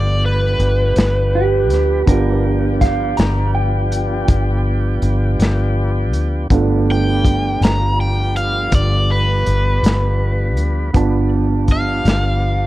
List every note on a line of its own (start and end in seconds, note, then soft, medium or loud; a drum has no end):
0.00 0.55 G1 medium
0.00 2.03 F3 medium
0.00 2.03 A3 soft
0.00 2.02 B3 soft
0.00 2.02 B3 medium
0.00 2.03 D4 soft
0.00 2.03 D4 medium
0.00 2.03 F4 soft
0.00 2.03 G4 medium
0.00 0.23 D5 medium
0.25 2.42 B4 medium
0.59 0.93 G1 medium
0.59 closed hi-hat soft
0.96 1.70 G1 medium
0.96 snare medium
0.96 closed hi-hat medium
1.35 2.06 G4 medium
1.70 2.04 D2 medium
1.70 snare soft
1.70 closed hi-hat soft
2.06 3.14 G1 medium
2.06 6.47 F3 medium
2.06 6.46 B3 medium
2.06 6.47 B3 medium
2.06 6.47 D4 soft
2.06 6.48 D4 medium
2.06 6.48 F4 soft
2.06 6.48 G4 medium
2.06 2.79 A#4 medium
2.06 kick medium
2.06 closed hi-hat medium
2.81 3.17 F5 medium
2.81 kick medium
2.81 snare soft
2.81 closed hi-hat medium
3.17 4.25 G1 medium
3.17 3.54 A#5 medium
3.17 snare medium
3.17 closed hi-hat medium
3.55 5.73 G5 medium
3.92 closed hi-hat medium
4.28 4.99 G1 medium
4.28 kick loud
4.28 closed hi-hat medium
5.02 5.37 G1 medium
5.02 closed hi-hat soft
5.39 6.13 G1 medium
5.39 snare medium
5.39 closed hi-hat medium
6.13 6.48 D2 medium
6.13 closed hi-hat soft
6.50 7.57 G1 medium
6.50 10.91 F3 medium
6.50 10.91 G3 medium
6.50 10.92 A3 medium
6.50 10.90 B3 medium
6.50 10.91 B3 medium
6.50 10.91 D4 medium
6.50 10.91 F4 medium
6.50 kick medium
6.50 closed hi-hat medium
6.91 7.62 G5 medium
7.25 kick medium
7.25 closed hi-hat soft
7.61 8.68 G1 medium
7.61 7.99 A#5 medium
7.61 snare medium
7.61 closed hi-hat medium
8.01 8.36 G5 medium
8.36 8.72 F5 medium
8.36 closed hi-hat soft
8.72 9.42 G1 medium
8.72 9.10 D5 medium
8.72 kick medium
8.72 closed hi-hat medium
9.11 11.28 B4 medium
9.46 9.81 G1 medium
9.46 closed hi-hat medium
9.83 10.56 G1 medium
9.83 snare medium
9.83 closed hi-hat medium
10.56 10.91 D2 medium
10.56 closed hi-hat soft
10.93 12.02 G1 medium
10.93 12.67 F3 medium
10.93 12.67 G3 medium
10.93 12.67 B3 medium
10.93 12.67 D4 medium
10.93 12.67 F4 soft
10.93 12.67 A5 medium
10.93 kick medium
10.93 closed hi-hat medium
11.68 kick medium
11.68 closed hi-hat soft
11.72 12.67 F5 medium
12.05 12.67 G1 medium
12.05 snare medium
12.05 closed hi-hat medium